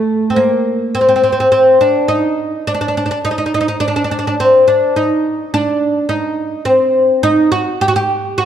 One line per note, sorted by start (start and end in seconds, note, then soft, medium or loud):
0.00 0.31 A3 medium
0.30 0.37 C4 medium
0.36 0.96 A#3 medium
0.95 1.00 C4 medium
1.01 1.07 C4 medium
1.09 1.15 C4 medium
1.16 1.22 C4 medium
1.24 1.31 C4 medium
1.32 1.39 C4 medium
1.40 1.47 C4 medium
1.52 1.80 C4 medium
1.81 2.08 D4 medium
2.08 2.67 D#4 medium
2.67 2.73 D4 medium
2.74 2.80 D4 medium
2.81 2.87 D4 medium
2.88 2.95 D4 medium
2.97 3.03 D4 medium
3.06 3.10 D4 medium
3.11 3.18 D4 medium
3.25 3.30 D#4 medium
3.31 3.37 D#4 medium
3.38 3.45 D#4 medium
3.46 3.53 D#4 medium
3.54 3.59 D#4 medium
3.61 3.67 D#4 medium
3.68 3.76 D#4 medium
3.80 3.87 D4 medium
3.88 3.95 D4 medium
3.96 4.03 D4 medium
4.04 4.10 D4 medium
4.11 4.18 D4 medium
4.19 4.26 D4 medium
4.27 4.34 D4 medium
4.40 4.67 C4 medium
4.68 4.96 D4 medium
4.96 5.53 D#4 medium
5.54 6.09 D4 medium
6.09 6.62 D#4 medium
6.65 7.25 C4 medium
7.23 7.51 D#4 loud
7.52 7.81 F#4 loud
7.81 7.88 G4 loud
7.88 7.95 F#4 medium
7.96 8.37 G4 medium
8.38 8.45 F#4 loud